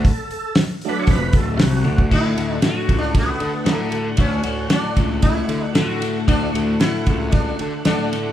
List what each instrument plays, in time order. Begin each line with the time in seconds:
0.05 kick, open hi-hat
0.10 tonewheel organ A4
0.31 open hi-hat
0.55 snare, open hi-hat
0.81 tonewheel organ F#3 A3 D4, open hi-hat
0.89 tonewheel organ B4
0.99 tonewheel organ C#5
1.07 picked electric bass F1, clean electric guitar F2, tonewheel organ B4, kick, open hi-hat
1.33 picked electric bass D1, clean electric guitar D2, kick, open hi-hat
1.37 tonewheel organ A4
1.58 picked electric bass C2, clean electric guitar C3, tonewheel organ F#4, snare, open hi-hat
1.84 picked electric bass D2, clean electric guitar D3, high tom
1.98 kick
2.10 clean electric guitar D2 A2 D3 A3 F#4, picked electric bass D2, tonewheel organ A3 F#4 F#5, sitar E4, kick, crash
2.36 picked electric bass D2, clean electric guitar D3 A3 F#4, ride
2.61 clean electric guitar D2 A2 D3 A3 F#4, snare, ride
2.65 sitar F#4
2.86 picked electric bass C#2, clean electric guitar D3 A3 F#4, kick, ride
2.99 sitar D4
3.15 sitar B3, kick, ride
3.40 picked electric bass D3, ride
3.64 clean electric guitar A2 D3 A3 F#4, picked electric bass D3, snare, ride
3.68 sitar A3
3.91 clean electric guitar D3 A3 F#4, ride
4.16 clean electric guitar D2 A2 D3 A3 F#4, picked electric bass D2, kick, ride
4.20 sitar C#4
4.43 picked electric bass D2, clean electric guitar D3 A3 F#4, ride
4.70 clean electric guitar D2 A2 D3 A3 F#4, sitar D4, snare, ride
4.95 picked electric bass C#2, clean electric guitar D3 A3 F#4, kick, ride
5.22 sitar E4, kick, ride
5.49 picked electric bass D3, ride
5.66 sitar D4
5.74 clean electric guitar A2 D3 A3 F#4, picked electric bass D3, sitar F#4, snare, ride
6.00 clean electric guitar D3 A3 F#4, ride
6.26 clean electric guitar D2 A2 D3 A3 F#4, picked electric bass D2, sitar D4, kick, ride
6.53 picked electric bass D2, clean electric guitar D3 A3 F#4, ride
6.80 clean electric guitar D2 A2 D3 A3 F#4, sitar E4, snare, ride
7.06 picked electric bass C#2, clean electric guitar D3 A3 F#4, kick, ride
7.31 sitar D4, kick, ride
7.59 picked electric bass D3, ride
7.85 clean electric guitar A2 D3 A3 F#4, picked electric bass D3, sitar D4, snare, ride
8.12 clean electric guitar D3 A3 F#4, snare, ride